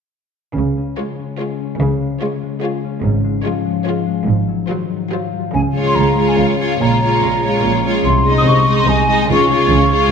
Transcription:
0.55 C#2 C#3
0.77 C#4
0.97 G#3 F4 C#5
1.19 C#4
1.39 G#3 F4 G#4 C#5
1.60 C#4
1.80 C#2 C#3
2.01 G#3
2.22 G#3 C#4 F4 C#5
2.43 G#3
2.62 G#3 F4 G#4 C#5
2.84 C#4
3.03 G#1 G#2
3.24 G#3
3.44 F3 G#3 F4 C#5
3.65 G#3
3.86 G#3 F4 C#5
4.06 G#3
4.27 G#1 G#2
4.48 F#3
4.69 D#3 F#3 F4 C5
4.91 F#3
5.11 F#3 F4 C5
5.33 F#3
5.54 C#2 C#3 G#5
5.75 G#3 C#4 F4 C#5
5.86 C6
5.95 C#2 C#3 F4 A#5
6.17 G#3 F4 G#4 C#5
6.28 G#5
6.38 C#2 C#3 C#5 F5
6.59 G#3 F4 C#5
6.70 F5
6.81 A#1 A#2 G#3 F4 C#5 A#5
7.02 G#3 F4 C#5
7.23 A#1 A#2 C#4
7.43 G#3 F4 C#5
7.64 A#1 A#2 G#4
7.85 G#3 C#4 F4 C#5
8.05 C2 C3 C6
8.26 G#3 D#4 D#5
8.38 D#6
8.46 C2 C3 D#4 C#6
8.67 G#3 D#4 G#4 D#5
8.78 C6
8.87 C2 C3 D#4 G#5
9.08 G#3 D#4 D#5
9.21 G#5
9.29 C#2 C#3 G#3 F4 C#5 C#6
9.51 G#3 F4 C#5
9.70 C#2 C#3 F4
9.91 G#3 F4 G#4 C#5

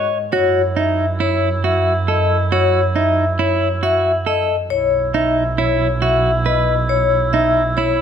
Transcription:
Already playing: G#2 C#5 D#5
0.32 F#2 E4 F#4 C#5
0.76 D#4 E5
1.20 E4 C#5
1.64 F#4 E5
2.08 A4 D#5
2.52 F#4 C#5
2.96 D#4 E5
3.39 E4 C#5
3.83 F#4 E5
4.26 A4 D#5
4.70 B1 E4 C#5
5.14 D#4 E5
5.58 E4 C#5
6.02 F#4 E5
6.46 B4 D#5
6.89 C#5
7.33 D#4 E5
7.77 E4 C#5

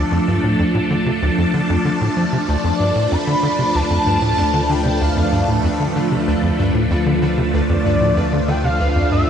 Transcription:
Already playing: D2 F3 A3 D4 A4 D5
0.12 F2
0.28 G2
0.44 A2
0.59 F2
0.75 A2
0.90 D3
1.06 C3
1.22 D2
1.38 F2
1.54 D3
1.70 F2
1.85 D3
2.01 A2
2.17 F3
2.33 C3
2.48 D2 B4 D5
2.64 F2
2.80 G2
2.96 A2
3.12 F2 B5
3.27 D3
3.43 D3
3.59 C3
3.75 D2 A5
3.90 F2
4.06 G2
4.22 A2
4.38 F2
4.54 D3
4.70 D3 G5
4.85 C3
5.01 D2 F5
5.17 F2
5.32 G2
5.48 A2
5.64 F2
5.80 D3
5.96 D3
6.12 C3
6.27 D2
6.43 F2
6.59 G2
6.75 A2
6.90 F2
7.06 D3
7.22 D3
7.38 C3
7.54 D2 D5
7.69 F2
7.85 G2
8.01 A2
8.17 F2
8.33 D3
8.48 D3 G5
8.64 C3 F5
8.80 D2 F5
8.96 F2
9.12 G2 E5

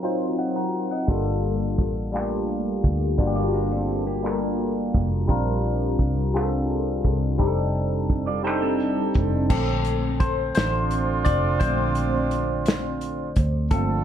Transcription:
Already playing: F#3 C4 D#4 F4 A#4
0.02 F#3 C4 D#4 F4 C5
0.39 D#5 F#5
0.56 F#5 A#5
0.91 D#5 F#5
1.07 G1 G3 A#3 D4 F4 A4, kick, closed hi-hat
1.43 closed hi-hat
1.78 A1, kick, closed hi-hat
2.12 G3 A3 D4 F4 G4, finger snap, closed hi-hat
2.19 A#3
2.49 closed hi-hat
2.83 D2, kick, closed hi-hat
3.18 G1 G3 A#3 D4 F4 F#4, kick, closed hi-hat
3.27 G4
3.36 F4 D5
3.53 D4 A#4, closed hi-hat
3.71 C4 A4
3.89 closed hi-hat
4.07 A#3 G4
4.23 G3 A#3 D4 F4 A4, finger snap, closed hi-hat
4.32 A#4
4.59 closed hi-hat
4.94 F1, kick, closed hi-hat
5.28 A#1 G3 C4 D4 F4 A#4, kick, closed hi-hat
5.63 closed hi-hat
5.99 C2, kick, closed hi-hat
6.33 G3 C4 D4 F4 G#4, finger snap, closed hi-hat
6.43 A4
6.69 closed hi-hat
7.04 C2, kick, closed hi-hat
7.38 F1 G3 C4 D4 D#4 G4, kick, closed hi-hat
7.47 A4
7.74 closed hi-hat
8.10 kick, closed hi-hat
8.27 F4 D5
8.43 G3 C4 D4 D#4 A4 C5, finger snap, closed hi-hat
8.62 C4 A4
8.80 closed hi-hat
9.14 F1, kick, closed hi-hat
9.49 A#1 D3 A3 C4 A4, kick, crash
9.84 closed hi-hat
10.20 C5, kick, closed hi-hat
10.55 A1 C4 D4 F4 C5, snare, closed hi-hat
10.91 closed hi-hat
11.25 F1 D5, kick, closed hi-hat
11.60 A#1 D3 A3 C4 C5, kick, closed hi-hat
11.95 closed hi-hat
12.31 closed hi-hat
12.66 snare, closed hi-hat
13.01 closed hi-hat
13.36 D2, kick, closed hi-hat
13.71 G1 F3 A3 A#3 C4 D4 F4 A4, kick, closed hi-hat

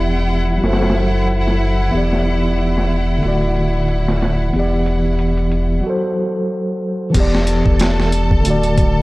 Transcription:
Already playing: E1 E3 B3 E4 G4 D5 F#5
0.16 closed hi-hat
0.30 closed hi-hat
0.58 F#3 F#4
0.62 F#1 A4, snare, closed hi-hat
0.68 C5
0.73 snare
0.82 snare
0.88 snare, closed hi-hat
1.27 closed hi-hat
1.48 snare
1.60 closed hi-hat
1.88 E3 B3
1.93 E1 G4, closed hi-hat
1.98 D5
2.13 snare
2.25 closed hi-hat
2.58 closed hi-hat
2.78 snare
2.90 closed hi-hat
3.18 D3 A3
3.23 D1 F#4, closed hi-hat
3.28 D5
3.41 closed hi-hat
3.56 closed hi-hat
3.88 closed hi-hat
4.09 snare
4.21 snare, closed hi-hat
4.49 E3 B3
4.54 E1 G4, closed hi-hat
4.59 D5
4.86 closed hi-hat
5.19 closed hi-hat
5.37 closed hi-hat
5.52 closed hi-hat
5.80 F#3 F#4
5.87 A4 C5
7.10 E3 B3
7.15 E1 G4 A4 A5, kick, closed hi-hat, crash
7.20 D5
7.35 snare
7.47 closed hi-hat
7.66 E1, kick
7.79 snare, closed hi-hat
8.00 snare
8.12 closed hi-hat
8.31 kick
8.40 D3 A3
8.45 D1 F#4, closed hi-hat
8.50 D5
8.63 closed hi-hat
8.77 kick, closed hi-hat

